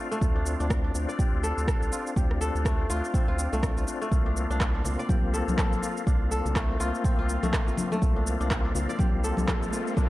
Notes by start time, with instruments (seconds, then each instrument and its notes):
Already playing: kora A3 C4 F4, tonewheel organ C4 D4 F4
0.11 kora A3, shaker
0.21 analog synth bass D2, tonewheel organ C4 D4 F4, kick, shaker
0.36 kora D4
0.46 shaker
0.60 analog synth bass D2, kora D4, shaker
0.70 kick, cross-stick, shaker
0.84 kora D4
0.95 analog synth bass D2, tonewheel organ C4 D4 F4, shaker
1.09 kora D5, shaker
1.19 kora G4, kick, shaker
1.33 analog synth bass D2
1.43 kora A4, shaker
1.58 analog synth bass D2, shaker
1.68 kora A4, kick, cross-stick, shaker
1.82 analog synth bass C2, shaker
1.92 kora F4, shaker
2.07 shaker
2.16 analog synth bass D2, tonewheel organ C4 D4 F4, kora G4, kick, shaker
2.31 cross-stick
2.41 kora A4, shaker
2.55 analog synth bass D2, shaker
2.65 kora A3, kick, cross-stick, shaker
2.90 analog synth bass D2, tonewheel organ C4 D4 F4, kora F4, shaker
3.04 shaker
3.14 kora C4, kick, shaker
3.28 analog synth bass D2, kora F4
3.38 tonewheel organ C4 D4 F4, shaker
3.53 analog synth bass C2, kora A3, shaker
3.63 kick, cross-stick, shaker
3.77 analog synth bass C2, kora F4, shaker
3.87 tonewheel organ C4 D4 F4, shaker
4.02 kora A3, shaker
4.12 analog synth bass C2, tonewheel organ A#3 C4 F4, kick, shaker
4.26 kora D4
4.37 shaker
4.50 analog synth bass C2, kora D4, shaker
4.60 kick, cross-stick, clap, shaker
4.75 kora D4
4.84 analog synth bass C2, tonewheel organ A#3 C4 F4, low conga, shaker
4.99 kora D5, shaker
5.09 kora G4, kick, high conga, shaker
5.24 analog synth bass C2
5.34 kora A4, shaker
5.48 analog synth bass C2, high conga, shaker
5.58 kora A4, kick, cross-stick, clap, high conga, shaker
5.72 analog synth bass A#1, shaker
5.83 kora F4, shaker
5.97 shaker
6.07 analog synth bass C2, tonewheel organ A#3 C4 F4, kora D4, kick, shaker
6.31 kora A4, shaker
6.45 analog synth bass C2, low conga, shaker
6.55 kora A3, kick, cross-stick, clap, shaker
6.80 analog synth bass C2, tonewheel organ A#3 C4 F4, kora F4, shaker
6.95 shaker
7.04 kora C4, kick, shaker
7.19 analog synth bass C2, kora F4
7.29 shaker
7.43 analog synth bass C2, kora A3, high conga, shaker
7.53 kick, cross-stick, clap, shaker
7.67 analog synth bass A#1, kora F4, shaker
7.77 high conga, low conga, shaker
7.92 kora A3, high conga, shaker
8.02 analog synth bass C2, tonewheel organ A#3 C4 F4, kick, riser, shaker
8.16 kora D4
8.27 shaker
8.41 analog synth bass C2, kora D4, shaker
8.51 kick, cross-stick, clap, shaker
8.65 kora D4
8.75 analog synth bass C2, tonewheel organ A#3 C4 F4, low conga, shaker
8.89 kora D5, shaker
8.99 kora G4, kick, high conga, shaker
9.14 analog synth bass C2
9.24 kora A4, shaker
9.37 analog synth bass C2, high conga, shaker
9.47 kora A4, kick, cross-stick, clap, high conga, shaker
9.62 analog synth bass A#1, shaker
9.73 kora F4, shaker
9.87 shaker
9.97 analog synth bass C2, tonewheel organ A#3 C4 F4, kora D4, kick, high conga, shaker